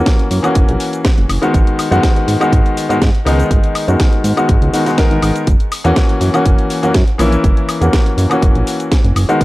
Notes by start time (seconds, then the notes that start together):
Already playing: E3 A#3 C#4 F#4
0.06 kick, snare, closed hi-hat, shaker
0.19 closed hi-hat
0.31 F#2, open hi-hat, shaker
0.43 E3 A#3 C#4 F#4, closed hi-hat, high woodblock, shaker
0.55 F#1, kick, closed hi-hat, shaker
0.69 A#1, closed hi-hat
0.80 open hi-hat, shaker
0.93 closed hi-hat, shaker
1.05 kick, snare, closed hi-hat, shaker
1.18 F#1, closed hi-hat
1.29 F#1, open hi-hat, high woodblock, shaker
1.42 D#3 G#3 B3 F#4, closed hi-hat, shaker
1.54 G#1, kick, closed hi-hat, shaker
1.67 closed hi-hat
1.79 open hi-hat, high woodblock, shaker
1.91 F#2 D#3 G#3 B3 F#4, closed hi-hat, shaker
2.03 kick, snare, closed hi-hat, shaker
2.16 closed hi-hat
2.28 G#2, open hi-hat, shaker
2.40 D#3 G#3 B3 F#4, closed hi-hat, high woodblock, shaker
2.52 G#1, kick, closed hi-hat, shaker
2.66 closed hi-hat
2.77 open hi-hat, shaker
2.89 G#2 D#3 G#3 B3 F#4, closed hi-hat, shaker
3.02 G#2, kick, snare, closed hi-hat, shaker
3.15 closed hi-hat
3.25 C#2 D#3 G#3 B3 D#4, open hi-hat, high woodblock, shaker
3.39 closed hi-hat, shaker
3.51 G#1, kick, closed hi-hat, shaker
3.64 closed hi-hat
3.75 open hi-hat, high woodblock, shaker
3.88 F#2 D#3 G#3 B3 F#4, closed hi-hat, shaker
4.00 kick, snare, closed hi-hat, shaker
4.13 closed hi-hat
4.24 G#2, open hi-hat, shaker
4.37 D#3 G#3 B3 F#4, closed hi-hat, high woodblock, shaker
4.49 G#1, kick, closed hi-hat, shaker
4.62 C#2, closed hi-hat
4.73 D#3 G#3 B3 F#4, open hi-hat, shaker
4.86 D#3 G#3 B3 F#4, snare, closed hi-hat, shaker
4.97 D#3 G#3 B3 A#4, kick, snare, closed hi-hat, shaker
5.11 G#1, closed hi-hat
5.22 G#1, open hi-hat, high woodblock, shaker
5.36 closed hi-hat, shaker
5.47 F#1, kick, closed hi-hat, shaker
5.60 closed hi-hat
5.72 open hi-hat, high woodblock, shaker
5.84 E2 E3 A#3 C#4 F#4, closed hi-hat, shaker
5.96 kick, snare, closed hi-hat, shaker
6.09 closed hi-hat
6.21 F#2, open hi-hat, shaker
6.34 E3 A#3 C#4 F#4, closed hi-hat, high woodblock, shaker
6.46 F#1, kick, closed hi-hat, shaker
6.59 closed hi-hat
6.70 open hi-hat, shaker
6.83 F#2 E3 A#3 C#4 F#4, closed hi-hat, shaker
6.94 F#2, kick, snare, closed hi-hat, shaker
7.08 closed hi-hat
7.18 A#1 E3 A#3 C#4 E4, open hi-hat, high woodblock, shaker
7.32 closed hi-hat, shaker
7.44 F#1, kick, closed hi-hat, shaker
7.57 closed hi-hat
7.69 open hi-hat, high woodblock, shaker
7.81 E2 E3 A#3 C#4 F#4, closed hi-hat, shaker
7.93 kick, snare, closed hi-hat, shaker
8.06 closed hi-hat
8.17 F#2, open hi-hat, shaker
8.30 E3 A#3 C#4 F#4, closed hi-hat, high woodblock, shaker
8.42 F#1, kick, closed hi-hat, shaker
8.55 A#1, closed hi-hat
8.67 open hi-hat, shaker
8.80 closed hi-hat, shaker
8.92 kick, snare, closed hi-hat, shaker
9.04 F#1, closed hi-hat
9.16 F#1, open hi-hat, high woodblock, shaker
9.29 D#3 G#3 B3 F#4, closed hi-hat, shaker
9.41 G#1, kick, closed hi-hat, shaker